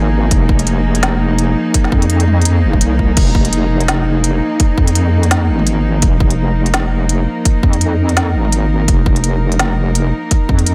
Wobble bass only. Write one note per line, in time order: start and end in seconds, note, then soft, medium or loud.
0.00 0.30 G#1 medium
0.31 1.55 F1 loud
1.92 2.65 F2 loud
2.64 2.83 F1 loud
2.81 3.16 C2 medium
3.17 4.41 F1 loud
4.78 5.50 F2 medium
5.49 6.01 G#1 medium
6.03 7.26 F1 loud
7.63 8.36 F2 medium
8.34 8.87 G#1 medium
8.88 10.12 F1 loud
10.49 10.75 F2 loud